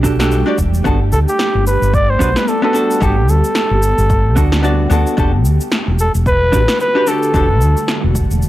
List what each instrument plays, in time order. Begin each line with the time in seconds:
Already playing: fretless electric bass B1, ambient pad G3 A3 D4 G4
0.03 hollow-body jazz guitar D4 F#4 G4 A4, kick, shaker
0.19 hollow-body jazz guitar D4 F#4 G4 A4, snare, shaker
0.32 shaker
0.46 hollow-body jazz guitar D4 F#4 G4 D5
0.58 fretless electric bass E1, kick, shaker
0.74 shaker
0.84 fretless electric bass G1, hollow-body jazz guitar B3 D4 F#4 A4, ambient pad B3, kick, shaker
1.12 fretless electric bass D2, flugelhorn A4, shaker
1.28 flugelhorn G4, shaker
1.39 snare, shaker
1.55 fretless electric bass G1
1.67 flugelhorn B4, shaker
1.82 fretless electric bass G1, shaker
1.94 flugelhorn D5, kick, shaker
2.10 flugelhorn C5
2.19 fretless electric bass B1, hollow-body jazz guitar B3 D4 F#4 B4, kick, shaker
2.36 flugelhorn B4, snare, shaker
2.48 flugelhorn A4, shaker
2.62 hollow-body jazz guitar B3 D4 F#4 B4, flugelhorn A4
2.73 hollow-body jazz guitar B3 D4 F#4 A4, shaker
2.91 shaker
3.00 fretless electric bass G1, hollow-body jazz guitar B3 D4 F#4 A4, flugelhorn G4, kick, shaker
3.28 fretless electric bass D2, flugelhorn A4, shaker
3.44 shaker
3.55 snare, shaker
3.71 fretless electric bass G1
3.83 shaker
3.98 fretless electric bass G1, shaker
4.10 kick, shaker
4.36 fretless electric bass D2, hollow-body jazz guitar B3 D4 F#4 A4, kick, shaker
4.52 snare, shaker
4.62 hollow-body jazz guitar B3 D4 F#4 D5, shaker
4.90 fretless electric bass D2, hollow-body jazz guitar B3 D4 F#4 A4, shaker
5.07 shaker
5.17 fretless electric bass E1, ambient pad D3 G3 A3 F#4, hollow-body jazz guitar D4 F#4 G4 A4, kick, shaker
5.45 fretless electric bass D2, shaker
5.61 shaker
5.72 snare, shaker
5.88 fretless electric bass E1
5.99 flugelhorn A4, shaker
6.15 fretless electric bass E1, shaker
6.26 flugelhorn B4, kick, shaker
6.52 fretless electric bass A1, hollow-body jazz guitar D4 F#4 G4 B4, kick, shaker
6.68 snare, shaker
6.80 flugelhorn B4, shaker
6.95 hollow-body jazz guitar D4 F#4 G4 B4
7.07 hollow-body jazz guitar D4 F#4 G4 A4, flugelhorn A4, shaker
7.23 shaker
7.34 fretless electric bass E1, hollow-body jazz guitar D4 F#4 G4 A4, kick, shaker
7.61 fretless electric bass D2, shaker
7.77 shaker
7.88 snare, shaker
8.04 fretless electric bass E1
8.15 kick, shaker
8.31 fretless electric bass E1, shaker
8.42 shaker